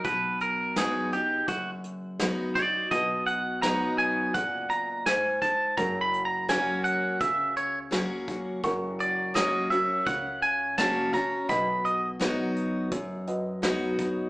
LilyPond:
<<
  \new Staff \with { instrumentName = "Clean electric guitar" } { \time 4/4 \key b \major \tempo 4 = 84 b'8 ais'8 gis'8 g'8 fis'8 r4 d''8 | dis''8 fis''8 ais''8 gis''8 fis''8 ais''8 gis''8 a''8 | \tuplet 3/2 { ais''8 b''8 ais''8 } gis''8 fis''8 e''8 cis''8 r4 | r8 d''8 dis''8 e''8 fis''8 gis''8 a''8 ais''8 |
b''8 dis''8 r2. | }
  \new Staff \with { instrumentName = "Upright piano" } { \time 4/4 \key b \major r1 | <fis' b' dis''>1 | <fis' ais' cis''>1 | <fis' ais' cis'''>1 |
<fis' b' dis''>2~ <fis' b' dis''>8 <fis' b' dis''>4. | }
  \new Staff \with { instrumentName = "Steel-string acoustic guitar" } { \time 4/4 \key b \major << { r4 <fis b dis' fis'>8 dis'8 r4 <fis b dis' fis'>8 <dis' fis'>8 | r4 <fis b dis' fis'>4 r2 | r4 <fis ais cis' fis'>4 r4 <fis ais cis' fis'>4 | r4 <fis ais cis' fis'>8 <cis' fis'>8 r4 <fis ais cis' fis'>8 <cis' fis'>8 |
r4 <fis b dis' fis'>4 r4 <fis b dis' fis'>4 | } \\ { b,2 fis,2 | b,2 ais,4 gis,4 | fis,2 cis2 | fis,2 cis2 |
b,2 fis,2 | } >> }
  \new Staff \with { instrumentName = "Upright bass" } { \clef bass \time 4/4 \key b \major b,,2 fis,,2 | b,,2 fis,,2 | fis,,2 cis,2 | fis,,2 cis,2 |
b,,2 fis,2 | }
  \new DrumStaff \with { instrumentName = "Drums" } \drummode { \time 4/4 <hh bd>8 hh8 <hh sn>8 hh8 <hh bd>8 hh8 <hh sn>8 <hh bd>8 | <hh bd>8 hh8 <hh sn>8 hh8 <hh bd>8 hh8 <hh sn>8 <hh bd>8 | <hh bd>8 hh8 <hh sn>8 hh8 <hh bd>8 hh8 <hh sn>8 <hh bd>8 | <hh bd>8 hh8 <hh sn>8 hh8 <hh bd>8 hh8 <hh sn>8 <hh bd>8 |
<hh bd>8 hh8 <hh sn>8 hh8 <hh bd>8 hh8 <hh sn>8 <hh bd>8 | }
>>